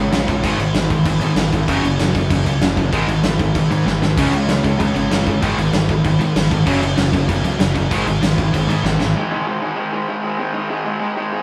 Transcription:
Already playing: G#1 C#3 G#3
0.12 A#1 C#3 G#3, snare, crash
0.28 C#3 G#3, kick, crash
0.44 G#1 G#2 D#3 G#3, kick, crash
0.58 G#1 G#2 D#3, crash
0.74 G#1 G#2 D#3, snare, crash
0.90 G#1 G#2 D#3, kick, crash
1.05 G#1 G#2 D#3, kick, crash
1.20 G#2 D#3, crash
1.35 G#1 G#2 D#3, snare, crash
1.53 G#1 G#2 D#3, kick, crash
1.68 F#1 F#2 C#3 F#3, kick, crash
1.83 F#1 F#2 C#3, crash
1.99 F#1 F#2 C#3, snare, crash
2.15 F#1 F#2 C#3, kick, crash
2.30 F#1 F#2 C#3, kick, crash
2.44 C#2 F#2 C#3, crash
2.60 F#1 F#2 C#3, snare, crash
2.77 F#2 C#3, kick, crash
2.92 G#1 G#2 D#3 G#3, kick, crash
3.07 G#1 G#2 D#3, crash
3.23 G#1 G#2 D#3, snare, crash
3.39 G#1 G#2 D#3, kick, crash
3.55 G#1 G#2 D#3, kick, crash
3.70 G#2 D#3, crash
3.86 G#1 G#2 D#3, snare
4.01 G#1 G#2 D#3, snare
4.17 C#2 C#3 G#3 C#4, kick, crash
4.33 C#2 C#3 G#3, crash
4.48 C#2 C#3 G#3, snare, crash
4.64 C#2 C#3 G#3, kick, crash
4.79 C#2 C#3 G#3, kick, crash
4.96 G#1 C#3 G#3, crash
5.11 G1 C#3 G#3, snare, crash
5.27 C#3 G#3, kick, crash
5.42 G#1 G#2 D#3 G#3, kick, crash
5.58 G#1 G#2 D#3, crash
5.72 G#1 G#2 D#3, snare, crash
5.89 G#1 G#2 D#3, kick, crash
6.04 G#1 G#2 D#3, kick, crash
6.19 G#2 D#3, crash
6.35 G#1 G#2 D#3, snare, crash
6.51 G#1 G#2 D#3, kick, crash
6.66 F#1 F#2 C#3 F#3, kick, crash
6.82 F#1 F#2 C#3, crash
6.96 F#1 F#2 C#3, snare, crash
7.13 F#1 F#2 C#3, kick, crash
7.29 F#1 F#2 C#3, kick, crash
7.43 C#2 F#2 C#3, crash
7.60 F#1 F#2 C#3, snare, crash
7.75 F#2 C#3, kick, crash
7.91 G#1 G#2 D#3 G#3, kick, crash
8.06 G#1 G#2 D#3, crash
8.21 G#1 G#2 D#3, snare, crash
8.38 G#1 G#2 D#3, kick, crash
8.54 G#1 G#2 D#3, kick, crash
8.67 G#2 D#3, crash
8.84 G#1 G#2 D#3, snare
8.99 G#1 G#2 D#3, snare
9.16 G#2 D#3 G#3
9.32 G#2 D#3 G#3
9.47 G#2 D#3 G#3
9.62 G#2 D#3 G#3
9.77 G#2 D#3 G#3
9.93 G#2 D#3 G#3
10.08 G#2 D#3 G#3
10.24 G#2 D#3 G#3
10.38 G#2 D#3 G#3
10.54 G#2 D#3 G#3
10.70 G#2 D#3 G#3
10.85 G#2 D#3 G#3
11.00 G#2 D#3 G#3
11.16 G#2 D#3 G#3
11.32 G#2 D#3 G#3

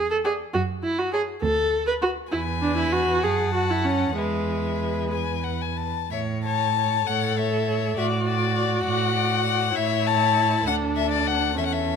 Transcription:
Already playing: E2
0.11 A4
0.24 G#4 D5 F#5
0.53 F#2 F#4
0.83 E4
0.98 F#4
1.13 G#4 C#5 A5
1.42 D2 A4
1.87 B4
2.02 F#4 B4 F#5
2.32 E2 E4 B4 G#5
2.62 D4
2.77 E4
2.92 F#4
3.23 F#2 G#4 F#5 A5
3.54 F#4
3.70 E4
3.85 C#4
4.17 E2 G#3 B4 E5
5.13 G#5
5.44 F#5
5.61 G#5
5.77 A5
6.11 A2 C#5 E5
6.45 C#5 A5
6.77 C#5
7.07 A2 A4 C#5 F#5
7.38 C#5 E5
7.68 C#5
7.96 A2 F#4 D5 E5
8.26 D5
8.55 D5
8.84 A2 D5 F#5
9.14 D5
9.43 D5
9.74 A2 E4 C#5 E5
10.07 A5
10.65 D2 D4 A4 F#5
10.96 E5
11.11 D5
11.27 F#5
11.58 E2 C#4 A4 E5
11.66 F#5
11.73 E5

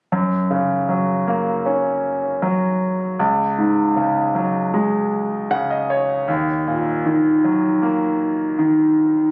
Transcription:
0.12 F#2
0.51 C#3
0.89 F#3
1.27 A#3
1.66 C#4
2.42 F#3
3.19 C#2
3.58 G#2
3.96 C#3
4.35 F#3
4.74 G#3
5.51 C#3 F#5
5.70 D#5
5.90 C#5
6.28 D#2
6.67 A#2
7.06 D#3
7.45 F#3
7.82 A#3
8.59 D#3

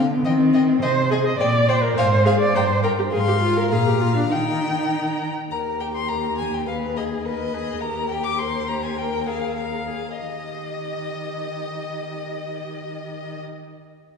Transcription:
Already playing: D3
0.12 B3
0.25 D#3 C4 D#5 G5
0.54 D#5 G5
0.82 C3 C5 D#5 G#5
1.11 G#4 D#5 G#5
1.26 D#5
1.40 A#2 D5 G5
1.69 C5 D5 G5
1.83 A#4
1.97 G#2 C5 F5 G#5
2.26 G#4 F5 G#5
2.40 D5
2.55 G2 C5 G5 A#5
2.83 A#4 G5 A#5
2.99 G4
3.12 G#2 G#4 F5 C6
3.28 G4
3.42 F4
3.57 A#4
3.71 A#2 G#4 F5 A#5
3.87 G4
4.01 F4
4.17 D4
4.30 D#3 D#4 G5 A#5
5.51 D#2 G4 A#4 A#5
5.80 G4 G5
5.95 C6
6.09 A#4 A#5
6.38 G4 G#5
6.54 G5
6.67 G#4 B4 F5
6.96 G#4 D#5
7.24 A#4 B4 D#5
7.53 G#4 B4
7.81 D#2 G4 A#4 A#5
8.10 G4 G5
8.24 D6
8.38 A#4 C5 C6
8.68 G4 A#5
8.83 G#5
8.97 A#4 G5
9.27 G#4 F5
9.56 G#4 A#4 F5
9.87 G#4
10.18 D#3 G4 D#5

